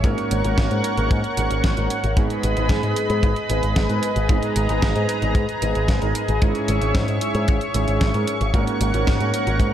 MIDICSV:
0, 0, Header, 1, 5, 480
1, 0, Start_track
1, 0, Key_signature, 5, "minor"
1, 0, Tempo, 530973
1, 42, Time_signature, 4, 2, 24, 8
1, 8801, End_track
2, 0, Start_track
2, 0, Title_t, "Analog synth pad"
2, 0, Program_c, 0, 89
2, 0, Note_on_c, 0, 73, 75
2, 40, Note_on_c, 0, 70, 79
2, 40, Note_on_c, 0, 78, 72
2, 40, Note_on_c, 0, 85, 86
2, 1925, Note_off_c, 0, 73, 0
2, 1941, Note_off_c, 0, 70, 0
2, 1942, Note_off_c, 0, 78, 0
2, 1942, Note_off_c, 0, 85, 0
2, 1961, Note_on_c, 0, 68, 79
2, 1961, Note_on_c, 0, 71, 72
2, 1961, Note_on_c, 0, 75, 74
2, 1961, Note_on_c, 0, 83, 88
2, 3862, Note_off_c, 0, 83, 0
2, 3882, Note_on_c, 0, 82, 91
2, 5765, Note_off_c, 0, 71, 0
2, 5765, Note_off_c, 0, 75, 0
2, 5782, Note_off_c, 0, 82, 0
2, 5801, Note_on_c, 0, 73, 70
2, 5801, Note_on_c, 0, 85, 84
2, 5802, Note_on_c, 0, 76, 70
2, 7685, Note_off_c, 0, 68, 0
2, 7702, Note_off_c, 0, 73, 0
2, 7702, Note_off_c, 0, 76, 0
2, 7721, Note_on_c, 0, 70, 82
2, 7721, Note_on_c, 0, 73, 74
2, 7721, Note_on_c, 0, 78, 72
2, 8801, Note_off_c, 0, 70, 0
2, 8801, Note_off_c, 0, 73, 0
2, 8801, Note_off_c, 0, 78, 0
2, 8801, Note_off_c, 0, 85, 0
2, 8801, End_track
3, 0, Start_track
3, 0, Title_t, "Grand piano"
3, 0, Program_c, 1, 0
3, 41, Note_on_c, 1, 44, 94
3, 41, Note_on_c, 1, 58, 81
3, 41, Note_on_c, 1, 61, 82
3, 41, Note_on_c, 1, 66, 87
3, 41, Note_on_c, 1, 70, 104
3, 372, Note_off_c, 1, 61, 0
3, 372, Note_off_c, 1, 66, 0
3, 372, Note_off_c, 1, 70, 0
3, 373, Note_off_c, 1, 44, 0
3, 373, Note_off_c, 1, 58, 0
3, 401, Note_on_c, 1, 44, 90
3, 401, Note_on_c, 1, 58, 84
3, 401, Note_on_c, 1, 61, 79
3, 401, Note_on_c, 1, 66, 80
3, 401, Note_on_c, 1, 70, 100
3, 852, Note_off_c, 1, 44, 0
3, 852, Note_off_c, 1, 58, 0
3, 852, Note_off_c, 1, 61, 0
3, 852, Note_off_c, 1, 66, 0
3, 852, Note_off_c, 1, 70, 0
3, 881, Note_on_c, 1, 44, 76
3, 881, Note_on_c, 1, 58, 68
3, 881, Note_on_c, 1, 61, 68
3, 881, Note_on_c, 1, 66, 70
3, 881, Note_on_c, 1, 70, 85
3, 1047, Note_off_c, 1, 44, 0
3, 1047, Note_off_c, 1, 58, 0
3, 1047, Note_off_c, 1, 61, 0
3, 1047, Note_off_c, 1, 66, 0
3, 1047, Note_off_c, 1, 70, 0
3, 1241, Note_on_c, 1, 44, 75
3, 1241, Note_on_c, 1, 61, 68
3, 1241, Note_on_c, 1, 66, 73
3, 1241, Note_on_c, 1, 70, 84
3, 1242, Note_on_c, 1, 58, 72
3, 1573, Note_off_c, 1, 44, 0
3, 1573, Note_off_c, 1, 58, 0
3, 1573, Note_off_c, 1, 61, 0
3, 1573, Note_off_c, 1, 66, 0
3, 1573, Note_off_c, 1, 70, 0
3, 1601, Note_on_c, 1, 44, 72
3, 1601, Note_on_c, 1, 58, 64
3, 1601, Note_on_c, 1, 61, 65
3, 1601, Note_on_c, 1, 66, 64
3, 1601, Note_on_c, 1, 73, 78
3, 1766, Note_off_c, 1, 66, 0
3, 1767, Note_off_c, 1, 44, 0
3, 1767, Note_off_c, 1, 58, 0
3, 1767, Note_off_c, 1, 61, 0
3, 1767, Note_off_c, 1, 73, 0
3, 1961, Note_on_c, 1, 44, 90
3, 1961, Note_on_c, 1, 56, 85
3, 1961, Note_on_c, 1, 59, 86
3, 1961, Note_on_c, 1, 63, 84
3, 1961, Note_on_c, 1, 68, 104
3, 2292, Note_off_c, 1, 44, 0
3, 2292, Note_off_c, 1, 56, 0
3, 2292, Note_off_c, 1, 59, 0
3, 2292, Note_off_c, 1, 63, 0
3, 2292, Note_off_c, 1, 68, 0
3, 2321, Note_on_c, 1, 56, 83
3, 2321, Note_on_c, 1, 68, 93
3, 2322, Note_on_c, 1, 44, 90
3, 2322, Note_on_c, 1, 59, 81
3, 2322, Note_on_c, 1, 63, 82
3, 2773, Note_off_c, 1, 44, 0
3, 2773, Note_off_c, 1, 56, 0
3, 2773, Note_off_c, 1, 59, 0
3, 2773, Note_off_c, 1, 63, 0
3, 2773, Note_off_c, 1, 68, 0
3, 2801, Note_on_c, 1, 44, 76
3, 2801, Note_on_c, 1, 56, 72
3, 2801, Note_on_c, 1, 59, 70
3, 2801, Note_on_c, 1, 63, 69
3, 2801, Note_on_c, 1, 68, 83
3, 2967, Note_off_c, 1, 44, 0
3, 2967, Note_off_c, 1, 56, 0
3, 2967, Note_off_c, 1, 59, 0
3, 2967, Note_off_c, 1, 63, 0
3, 2967, Note_off_c, 1, 68, 0
3, 3161, Note_on_c, 1, 44, 74
3, 3161, Note_on_c, 1, 56, 69
3, 3161, Note_on_c, 1, 59, 70
3, 3161, Note_on_c, 1, 63, 69
3, 3161, Note_on_c, 1, 68, 84
3, 3492, Note_off_c, 1, 44, 0
3, 3493, Note_off_c, 1, 56, 0
3, 3493, Note_off_c, 1, 59, 0
3, 3493, Note_off_c, 1, 63, 0
3, 3493, Note_off_c, 1, 68, 0
3, 3520, Note_on_c, 1, 44, 69
3, 3520, Note_on_c, 1, 56, 65
3, 3520, Note_on_c, 1, 59, 66
3, 3520, Note_on_c, 1, 63, 65
3, 3520, Note_on_c, 1, 70, 80
3, 3686, Note_off_c, 1, 44, 0
3, 3686, Note_off_c, 1, 56, 0
3, 3686, Note_off_c, 1, 59, 0
3, 3686, Note_off_c, 1, 63, 0
3, 3686, Note_off_c, 1, 70, 0
3, 3880, Note_on_c, 1, 68, 104
3, 3881, Note_on_c, 1, 44, 99
3, 3881, Note_on_c, 1, 56, 86
3, 3881, Note_on_c, 1, 59, 85
3, 3881, Note_on_c, 1, 63, 86
3, 4212, Note_off_c, 1, 44, 0
3, 4212, Note_off_c, 1, 56, 0
3, 4212, Note_off_c, 1, 59, 0
3, 4212, Note_off_c, 1, 63, 0
3, 4212, Note_off_c, 1, 68, 0
3, 4241, Note_on_c, 1, 44, 92
3, 4241, Note_on_c, 1, 56, 82
3, 4241, Note_on_c, 1, 59, 82
3, 4241, Note_on_c, 1, 63, 81
3, 4241, Note_on_c, 1, 68, 101
3, 4692, Note_off_c, 1, 44, 0
3, 4692, Note_off_c, 1, 56, 0
3, 4692, Note_off_c, 1, 59, 0
3, 4692, Note_off_c, 1, 63, 0
3, 4692, Note_off_c, 1, 68, 0
3, 4721, Note_on_c, 1, 44, 80
3, 4721, Note_on_c, 1, 56, 72
3, 4721, Note_on_c, 1, 59, 73
3, 4721, Note_on_c, 1, 63, 70
3, 4721, Note_on_c, 1, 68, 86
3, 4886, Note_off_c, 1, 44, 0
3, 4886, Note_off_c, 1, 56, 0
3, 4886, Note_off_c, 1, 59, 0
3, 4886, Note_off_c, 1, 63, 0
3, 4886, Note_off_c, 1, 68, 0
3, 5081, Note_on_c, 1, 44, 81
3, 5081, Note_on_c, 1, 56, 72
3, 5081, Note_on_c, 1, 59, 72
3, 5081, Note_on_c, 1, 63, 72
3, 5081, Note_on_c, 1, 68, 86
3, 5412, Note_off_c, 1, 44, 0
3, 5412, Note_off_c, 1, 56, 0
3, 5412, Note_off_c, 1, 59, 0
3, 5412, Note_off_c, 1, 63, 0
3, 5412, Note_off_c, 1, 68, 0
3, 5442, Note_on_c, 1, 44, 73
3, 5442, Note_on_c, 1, 56, 66
3, 5442, Note_on_c, 1, 59, 65
3, 5442, Note_on_c, 1, 63, 64
3, 5442, Note_on_c, 1, 70, 79
3, 5607, Note_off_c, 1, 44, 0
3, 5607, Note_off_c, 1, 56, 0
3, 5607, Note_off_c, 1, 59, 0
3, 5607, Note_off_c, 1, 63, 0
3, 5607, Note_off_c, 1, 70, 0
3, 5802, Note_on_c, 1, 44, 89
3, 5802, Note_on_c, 1, 56, 89
3, 5802, Note_on_c, 1, 61, 89
3, 5802, Note_on_c, 1, 64, 83
3, 5802, Note_on_c, 1, 68, 101
3, 6133, Note_off_c, 1, 44, 0
3, 6133, Note_off_c, 1, 56, 0
3, 6133, Note_off_c, 1, 61, 0
3, 6133, Note_off_c, 1, 64, 0
3, 6133, Note_off_c, 1, 68, 0
3, 6161, Note_on_c, 1, 44, 87
3, 6161, Note_on_c, 1, 61, 87
3, 6162, Note_on_c, 1, 56, 83
3, 6162, Note_on_c, 1, 64, 80
3, 6162, Note_on_c, 1, 68, 97
3, 6612, Note_off_c, 1, 61, 0
3, 6613, Note_off_c, 1, 44, 0
3, 6613, Note_off_c, 1, 56, 0
3, 6613, Note_off_c, 1, 64, 0
3, 6613, Note_off_c, 1, 68, 0
3, 6641, Note_on_c, 1, 44, 75
3, 6641, Note_on_c, 1, 56, 76
3, 6642, Note_on_c, 1, 61, 72
3, 6642, Note_on_c, 1, 64, 72
3, 6642, Note_on_c, 1, 68, 86
3, 6807, Note_off_c, 1, 44, 0
3, 6807, Note_off_c, 1, 56, 0
3, 6807, Note_off_c, 1, 61, 0
3, 6807, Note_off_c, 1, 64, 0
3, 6807, Note_off_c, 1, 68, 0
3, 7001, Note_on_c, 1, 44, 79
3, 7002, Note_on_c, 1, 56, 71
3, 7002, Note_on_c, 1, 61, 70
3, 7002, Note_on_c, 1, 64, 72
3, 7002, Note_on_c, 1, 68, 84
3, 7333, Note_off_c, 1, 44, 0
3, 7333, Note_off_c, 1, 56, 0
3, 7333, Note_off_c, 1, 61, 0
3, 7333, Note_off_c, 1, 64, 0
3, 7333, Note_off_c, 1, 68, 0
3, 7362, Note_on_c, 1, 44, 68
3, 7362, Note_on_c, 1, 56, 67
3, 7362, Note_on_c, 1, 61, 67
3, 7362, Note_on_c, 1, 64, 64
3, 7362, Note_on_c, 1, 70, 78
3, 7527, Note_off_c, 1, 44, 0
3, 7527, Note_off_c, 1, 56, 0
3, 7527, Note_off_c, 1, 61, 0
3, 7527, Note_off_c, 1, 64, 0
3, 7527, Note_off_c, 1, 70, 0
3, 7721, Note_on_c, 1, 44, 99
3, 7722, Note_on_c, 1, 58, 85
3, 7722, Note_on_c, 1, 61, 84
3, 7722, Note_on_c, 1, 66, 92
3, 7722, Note_on_c, 1, 70, 104
3, 8053, Note_off_c, 1, 44, 0
3, 8053, Note_off_c, 1, 58, 0
3, 8053, Note_off_c, 1, 61, 0
3, 8053, Note_off_c, 1, 66, 0
3, 8053, Note_off_c, 1, 70, 0
3, 8081, Note_on_c, 1, 58, 84
3, 8081, Note_on_c, 1, 61, 87
3, 8081, Note_on_c, 1, 66, 82
3, 8081, Note_on_c, 1, 70, 95
3, 8082, Note_on_c, 1, 44, 96
3, 8532, Note_off_c, 1, 66, 0
3, 8533, Note_off_c, 1, 44, 0
3, 8533, Note_off_c, 1, 58, 0
3, 8533, Note_off_c, 1, 61, 0
3, 8533, Note_off_c, 1, 70, 0
3, 8561, Note_on_c, 1, 58, 73
3, 8561, Note_on_c, 1, 66, 71
3, 8562, Note_on_c, 1, 44, 83
3, 8562, Note_on_c, 1, 61, 72
3, 8562, Note_on_c, 1, 70, 85
3, 8727, Note_off_c, 1, 44, 0
3, 8727, Note_off_c, 1, 58, 0
3, 8727, Note_off_c, 1, 61, 0
3, 8727, Note_off_c, 1, 66, 0
3, 8727, Note_off_c, 1, 70, 0
3, 8801, End_track
4, 0, Start_track
4, 0, Title_t, "Picked electric bass"
4, 0, Program_c, 2, 34
4, 35, Note_on_c, 2, 32, 94
4, 128, Note_off_c, 2, 32, 0
4, 282, Note_on_c, 2, 32, 92
4, 372, Note_off_c, 2, 32, 0
4, 402, Note_on_c, 2, 32, 73
4, 492, Note_off_c, 2, 32, 0
4, 522, Note_on_c, 2, 32, 98
4, 611, Note_off_c, 2, 32, 0
4, 642, Note_on_c, 2, 44, 76
4, 732, Note_off_c, 2, 44, 0
4, 882, Note_on_c, 2, 32, 80
4, 972, Note_off_c, 2, 32, 0
4, 1002, Note_on_c, 2, 44, 100
4, 1091, Note_off_c, 2, 44, 0
4, 1243, Note_on_c, 2, 32, 89
4, 1332, Note_off_c, 2, 32, 0
4, 1362, Note_on_c, 2, 32, 76
4, 1452, Note_off_c, 2, 32, 0
4, 1483, Note_on_c, 2, 32, 97
4, 1572, Note_off_c, 2, 32, 0
4, 1603, Note_on_c, 2, 32, 73
4, 1692, Note_off_c, 2, 32, 0
4, 1843, Note_on_c, 2, 32, 78
4, 1932, Note_off_c, 2, 32, 0
4, 1960, Note_on_c, 2, 32, 99
4, 2051, Note_off_c, 2, 32, 0
4, 2202, Note_on_c, 2, 32, 90
4, 2292, Note_off_c, 2, 32, 0
4, 2322, Note_on_c, 2, 32, 75
4, 2412, Note_off_c, 2, 32, 0
4, 2435, Note_on_c, 2, 44, 94
4, 2528, Note_off_c, 2, 44, 0
4, 2561, Note_on_c, 2, 44, 73
4, 2651, Note_off_c, 2, 44, 0
4, 2801, Note_on_c, 2, 44, 82
4, 2891, Note_off_c, 2, 44, 0
4, 2920, Note_on_c, 2, 32, 100
4, 3011, Note_off_c, 2, 32, 0
4, 3162, Note_on_c, 2, 32, 90
4, 3252, Note_off_c, 2, 32, 0
4, 3281, Note_on_c, 2, 32, 78
4, 3371, Note_off_c, 2, 32, 0
4, 3403, Note_on_c, 2, 32, 102
4, 3492, Note_off_c, 2, 32, 0
4, 3521, Note_on_c, 2, 44, 74
4, 3611, Note_off_c, 2, 44, 0
4, 3761, Note_on_c, 2, 32, 82
4, 3851, Note_off_c, 2, 32, 0
4, 3880, Note_on_c, 2, 32, 100
4, 3971, Note_off_c, 2, 32, 0
4, 4122, Note_on_c, 2, 32, 90
4, 4211, Note_off_c, 2, 32, 0
4, 4242, Note_on_c, 2, 32, 78
4, 4332, Note_off_c, 2, 32, 0
4, 4361, Note_on_c, 2, 32, 101
4, 4451, Note_off_c, 2, 32, 0
4, 4482, Note_on_c, 2, 44, 76
4, 4572, Note_off_c, 2, 44, 0
4, 4722, Note_on_c, 2, 32, 80
4, 4812, Note_off_c, 2, 32, 0
4, 4835, Note_on_c, 2, 44, 95
4, 4928, Note_off_c, 2, 44, 0
4, 5082, Note_on_c, 2, 32, 90
4, 5172, Note_off_c, 2, 32, 0
4, 5202, Note_on_c, 2, 32, 77
4, 5292, Note_off_c, 2, 32, 0
4, 5318, Note_on_c, 2, 32, 99
4, 5410, Note_off_c, 2, 32, 0
4, 5442, Note_on_c, 2, 32, 77
4, 5531, Note_off_c, 2, 32, 0
4, 5682, Note_on_c, 2, 32, 82
4, 5772, Note_off_c, 2, 32, 0
4, 5804, Note_on_c, 2, 32, 94
4, 5893, Note_off_c, 2, 32, 0
4, 6042, Note_on_c, 2, 32, 96
4, 6131, Note_off_c, 2, 32, 0
4, 6162, Note_on_c, 2, 32, 79
4, 6252, Note_off_c, 2, 32, 0
4, 6280, Note_on_c, 2, 44, 98
4, 6371, Note_off_c, 2, 44, 0
4, 6402, Note_on_c, 2, 44, 73
4, 6491, Note_off_c, 2, 44, 0
4, 6641, Note_on_c, 2, 44, 82
4, 6731, Note_off_c, 2, 44, 0
4, 6766, Note_on_c, 2, 32, 98
4, 6854, Note_off_c, 2, 32, 0
4, 7001, Note_on_c, 2, 32, 90
4, 7091, Note_off_c, 2, 32, 0
4, 7121, Note_on_c, 2, 32, 76
4, 7211, Note_off_c, 2, 32, 0
4, 7242, Note_on_c, 2, 32, 102
4, 7331, Note_off_c, 2, 32, 0
4, 7363, Note_on_c, 2, 44, 78
4, 7452, Note_off_c, 2, 44, 0
4, 7602, Note_on_c, 2, 32, 81
4, 7692, Note_off_c, 2, 32, 0
4, 7719, Note_on_c, 2, 32, 99
4, 7810, Note_off_c, 2, 32, 0
4, 7962, Note_on_c, 2, 32, 97
4, 8051, Note_off_c, 2, 32, 0
4, 8082, Note_on_c, 2, 32, 79
4, 8171, Note_off_c, 2, 32, 0
4, 8207, Note_on_c, 2, 32, 98
4, 8294, Note_off_c, 2, 32, 0
4, 8322, Note_on_c, 2, 44, 74
4, 8412, Note_off_c, 2, 44, 0
4, 8561, Note_on_c, 2, 32, 83
4, 8651, Note_off_c, 2, 32, 0
4, 8675, Note_on_c, 2, 44, 101
4, 8768, Note_off_c, 2, 44, 0
4, 8801, End_track
5, 0, Start_track
5, 0, Title_t, "Drums"
5, 35, Note_on_c, 9, 36, 122
5, 42, Note_on_c, 9, 42, 60
5, 125, Note_off_c, 9, 36, 0
5, 132, Note_off_c, 9, 42, 0
5, 162, Note_on_c, 9, 42, 37
5, 252, Note_off_c, 9, 42, 0
5, 281, Note_on_c, 9, 42, 91
5, 372, Note_off_c, 9, 42, 0
5, 402, Note_on_c, 9, 42, 38
5, 492, Note_off_c, 9, 42, 0
5, 521, Note_on_c, 9, 38, 113
5, 521, Note_on_c, 9, 42, 59
5, 522, Note_on_c, 9, 36, 106
5, 612, Note_off_c, 9, 36, 0
5, 612, Note_off_c, 9, 38, 0
5, 612, Note_off_c, 9, 42, 0
5, 641, Note_on_c, 9, 42, 37
5, 732, Note_off_c, 9, 42, 0
5, 761, Note_on_c, 9, 42, 94
5, 851, Note_off_c, 9, 42, 0
5, 881, Note_on_c, 9, 42, 35
5, 972, Note_off_c, 9, 42, 0
5, 1001, Note_on_c, 9, 36, 125
5, 1001, Note_on_c, 9, 42, 64
5, 1092, Note_off_c, 9, 36, 0
5, 1092, Note_off_c, 9, 42, 0
5, 1121, Note_on_c, 9, 42, 36
5, 1211, Note_off_c, 9, 42, 0
5, 1241, Note_on_c, 9, 42, 89
5, 1332, Note_off_c, 9, 42, 0
5, 1361, Note_on_c, 9, 42, 38
5, 1451, Note_off_c, 9, 42, 0
5, 1481, Note_on_c, 9, 38, 121
5, 1481, Note_on_c, 9, 42, 61
5, 1483, Note_on_c, 9, 36, 94
5, 1571, Note_off_c, 9, 38, 0
5, 1571, Note_off_c, 9, 42, 0
5, 1574, Note_off_c, 9, 36, 0
5, 1601, Note_on_c, 9, 42, 39
5, 1691, Note_off_c, 9, 42, 0
5, 1721, Note_on_c, 9, 42, 90
5, 1812, Note_off_c, 9, 42, 0
5, 1841, Note_on_c, 9, 42, 38
5, 1932, Note_off_c, 9, 42, 0
5, 1960, Note_on_c, 9, 36, 127
5, 1961, Note_on_c, 9, 42, 58
5, 2050, Note_off_c, 9, 36, 0
5, 2051, Note_off_c, 9, 42, 0
5, 2081, Note_on_c, 9, 42, 36
5, 2172, Note_off_c, 9, 42, 0
5, 2201, Note_on_c, 9, 42, 84
5, 2291, Note_off_c, 9, 42, 0
5, 2321, Note_on_c, 9, 42, 37
5, 2411, Note_off_c, 9, 42, 0
5, 2435, Note_on_c, 9, 36, 107
5, 2441, Note_on_c, 9, 38, 113
5, 2441, Note_on_c, 9, 42, 62
5, 2525, Note_off_c, 9, 36, 0
5, 2531, Note_off_c, 9, 38, 0
5, 2531, Note_off_c, 9, 42, 0
5, 2560, Note_on_c, 9, 42, 37
5, 2650, Note_off_c, 9, 42, 0
5, 2680, Note_on_c, 9, 42, 88
5, 2770, Note_off_c, 9, 42, 0
5, 2800, Note_on_c, 9, 42, 37
5, 2891, Note_off_c, 9, 42, 0
5, 2920, Note_on_c, 9, 36, 104
5, 2920, Note_on_c, 9, 42, 63
5, 3010, Note_off_c, 9, 36, 0
5, 3011, Note_off_c, 9, 42, 0
5, 3041, Note_on_c, 9, 42, 35
5, 3131, Note_off_c, 9, 42, 0
5, 3160, Note_on_c, 9, 42, 84
5, 3251, Note_off_c, 9, 42, 0
5, 3281, Note_on_c, 9, 42, 37
5, 3371, Note_off_c, 9, 42, 0
5, 3401, Note_on_c, 9, 38, 118
5, 3401, Note_on_c, 9, 42, 63
5, 3403, Note_on_c, 9, 36, 97
5, 3491, Note_off_c, 9, 38, 0
5, 3491, Note_off_c, 9, 42, 0
5, 3493, Note_off_c, 9, 36, 0
5, 3521, Note_on_c, 9, 42, 36
5, 3612, Note_off_c, 9, 42, 0
5, 3641, Note_on_c, 9, 42, 83
5, 3731, Note_off_c, 9, 42, 0
5, 3761, Note_on_c, 9, 42, 36
5, 3851, Note_off_c, 9, 42, 0
5, 3880, Note_on_c, 9, 36, 113
5, 3881, Note_on_c, 9, 42, 58
5, 3971, Note_off_c, 9, 36, 0
5, 3971, Note_off_c, 9, 42, 0
5, 4001, Note_on_c, 9, 42, 37
5, 4091, Note_off_c, 9, 42, 0
5, 4121, Note_on_c, 9, 42, 87
5, 4211, Note_off_c, 9, 42, 0
5, 4241, Note_on_c, 9, 42, 38
5, 4331, Note_off_c, 9, 42, 0
5, 4361, Note_on_c, 9, 36, 92
5, 4361, Note_on_c, 9, 38, 112
5, 4361, Note_on_c, 9, 42, 58
5, 4451, Note_off_c, 9, 36, 0
5, 4451, Note_off_c, 9, 38, 0
5, 4451, Note_off_c, 9, 42, 0
5, 4480, Note_on_c, 9, 42, 36
5, 4571, Note_off_c, 9, 42, 0
5, 4600, Note_on_c, 9, 42, 84
5, 4691, Note_off_c, 9, 42, 0
5, 4721, Note_on_c, 9, 42, 35
5, 4811, Note_off_c, 9, 42, 0
5, 4835, Note_on_c, 9, 36, 122
5, 4840, Note_on_c, 9, 42, 62
5, 4926, Note_off_c, 9, 36, 0
5, 4931, Note_off_c, 9, 42, 0
5, 4961, Note_on_c, 9, 42, 36
5, 5051, Note_off_c, 9, 42, 0
5, 5081, Note_on_c, 9, 42, 90
5, 5171, Note_off_c, 9, 42, 0
5, 5201, Note_on_c, 9, 42, 36
5, 5291, Note_off_c, 9, 42, 0
5, 5318, Note_on_c, 9, 36, 93
5, 5321, Note_on_c, 9, 38, 107
5, 5321, Note_on_c, 9, 42, 62
5, 5409, Note_off_c, 9, 36, 0
5, 5411, Note_off_c, 9, 38, 0
5, 5411, Note_off_c, 9, 42, 0
5, 5441, Note_on_c, 9, 42, 38
5, 5531, Note_off_c, 9, 42, 0
5, 5560, Note_on_c, 9, 42, 87
5, 5651, Note_off_c, 9, 42, 0
5, 5681, Note_on_c, 9, 42, 36
5, 5771, Note_off_c, 9, 42, 0
5, 5801, Note_on_c, 9, 42, 58
5, 5804, Note_on_c, 9, 36, 109
5, 5891, Note_off_c, 9, 42, 0
5, 5895, Note_off_c, 9, 36, 0
5, 5921, Note_on_c, 9, 42, 37
5, 6011, Note_off_c, 9, 42, 0
5, 6041, Note_on_c, 9, 42, 87
5, 6132, Note_off_c, 9, 42, 0
5, 6161, Note_on_c, 9, 42, 38
5, 6252, Note_off_c, 9, 42, 0
5, 6280, Note_on_c, 9, 36, 104
5, 6281, Note_on_c, 9, 38, 106
5, 6281, Note_on_c, 9, 42, 62
5, 6370, Note_off_c, 9, 36, 0
5, 6372, Note_off_c, 9, 38, 0
5, 6372, Note_off_c, 9, 42, 0
5, 6401, Note_on_c, 9, 42, 37
5, 6492, Note_off_c, 9, 42, 0
5, 6521, Note_on_c, 9, 42, 93
5, 6611, Note_off_c, 9, 42, 0
5, 6641, Note_on_c, 9, 42, 36
5, 6731, Note_off_c, 9, 42, 0
5, 6761, Note_on_c, 9, 42, 62
5, 6766, Note_on_c, 9, 36, 112
5, 6851, Note_off_c, 9, 42, 0
5, 6857, Note_off_c, 9, 36, 0
5, 6881, Note_on_c, 9, 42, 36
5, 6971, Note_off_c, 9, 42, 0
5, 7000, Note_on_c, 9, 42, 90
5, 7091, Note_off_c, 9, 42, 0
5, 7121, Note_on_c, 9, 42, 36
5, 7211, Note_off_c, 9, 42, 0
5, 7241, Note_on_c, 9, 38, 111
5, 7241, Note_on_c, 9, 42, 62
5, 7242, Note_on_c, 9, 36, 90
5, 7331, Note_off_c, 9, 38, 0
5, 7331, Note_off_c, 9, 42, 0
5, 7332, Note_off_c, 9, 36, 0
5, 7361, Note_on_c, 9, 42, 39
5, 7451, Note_off_c, 9, 42, 0
5, 7481, Note_on_c, 9, 42, 83
5, 7571, Note_off_c, 9, 42, 0
5, 7602, Note_on_c, 9, 42, 37
5, 7692, Note_off_c, 9, 42, 0
5, 7719, Note_on_c, 9, 36, 108
5, 7722, Note_on_c, 9, 42, 63
5, 7809, Note_off_c, 9, 36, 0
5, 7812, Note_off_c, 9, 42, 0
5, 7841, Note_on_c, 9, 42, 40
5, 7932, Note_off_c, 9, 42, 0
5, 7961, Note_on_c, 9, 42, 96
5, 8052, Note_off_c, 9, 42, 0
5, 8082, Note_on_c, 9, 42, 37
5, 8172, Note_off_c, 9, 42, 0
5, 8202, Note_on_c, 9, 38, 110
5, 8202, Note_on_c, 9, 42, 61
5, 8207, Note_on_c, 9, 36, 108
5, 8292, Note_off_c, 9, 38, 0
5, 8292, Note_off_c, 9, 42, 0
5, 8297, Note_off_c, 9, 36, 0
5, 8321, Note_on_c, 9, 42, 38
5, 8412, Note_off_c, 9, 42, 0
5, 8441, Note_on_c, 9, 42, 92
5, 8531, Note_off_c, 9, 42, 0
5, 8561, Note_on_c, 9, 42, 37
5, 8652, Note_off_c, 9, 42, 0
5, 8675, Note_on_c, 9, 36, 96
5, 8682, Note_on_c, 9, 42, 69
5, 8765, Note_off_c, 9, 36, 0
5, 8772, Note_off_c, 9, 42, 0
5, 8801, End_track
0, 0, End_of_file